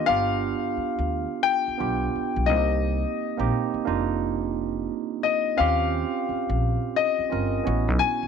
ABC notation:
X:1
M:4/4
L:1/16
Q:"Swing 16ths" 1/4=87
K:Gphr
V:1 name="Grand piano"
f8 g6 e2- | e6 z8 e2 | f8 e6 a2 |]
V:2 name="Tine electric piano"
[=B,DFG]6- [B,DFG] z3 [B,DFG]4 [_B,CEFG]2- | [B,CEFG]2 z [B,CEG]2 z [B,DEF]6- [B,DEF] z3 | [C_DFG]6- [CDFG] z3 [CDFB]2 [=B,^C=E^F]3 z |]
V:3 name="Upright bass" clef=bass
G,,,3 z2 D,,2 z3 =B,,,2 z B,,, C,,2- | C,,2 z B,,, z2 F,,,6 z4 | E,,3 z2 B,,,2 z3 G,,,2 =A,,, =B,,, z G,,, |]